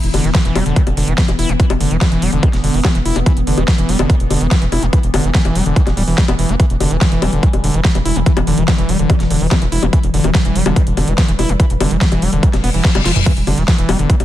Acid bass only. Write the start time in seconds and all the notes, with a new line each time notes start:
0.14 D3
0.24 E3
0.35 B3
0.45 E3
0.56 G3
0.66 D3
0.76 E3
0.97 D3
1.08 E3
1.18 B3
1.28 E3
1.39 E4
1.49 G3
1.60 E3
1.81 D3
1.91 E3
2.01 B3
2.12 E3
2.22 G3
2.33 D3
2.43 E3
2.64 D3
2.74 E3
2.85 B3
2.95 E3
3.06 E4
3.16 G3
3.26 E3
3.47 D3
3.58 E3
3.68 B3
3.78 E3
3.89 G3
3.99 D3
4.10 E3
4.30 D3
4.41 E3
4.51 B3
4.62 E3
4.72 E4
4.83 G3
4.93 E3
5.14 D3
5.24 E3
5.35 B3
5.45 E3
5.55 G3
5.66 D3
5.76 E3
5.97 G3
6.08 E3
6.18 G3
6.28 B3
6.39 E3
6.49 B3
6.60 E3
6.80 D3
6.91 E3
7.01 B3
7.12 E3
7.22 G3
7.33 D3
7.43 E3
7.64 D3
7.74 E3
7.85 B3
7.95 E3
8.05 E4
8.16 G3
8.26 E3
8.47 D3
8.58 E3
8.68 B3
8.78 E3
8.89 G3
8.99 D3
9.10 E3
9.30 D3
9.41 E3
9.51 B3
9.62 E3
9.72 E4
9.83 G3
9.93 E3
10.14 D3
10.24 E3
10.35 B3
10.45 E3
10.56 G3
10.66 D3
10.76 E3
10.97 D3
11.08 E3
11.18 B3
11.28 E3
11.39 E4
11.49 G3
11.60 E3
11.81 D3
11.91 E3
12.01 B3
12.12 E3
12.22 G3
12.33 D3
12.43 E3
12.64 B3
12.74 E3
12.85 F3
12.95 G3
13.05 F4
13.16 E3
13.26 E3
13.47 D3
13.58 E3
13.68 B3
13.78 E3
13.89 G3
13.99 D3
14.10 E3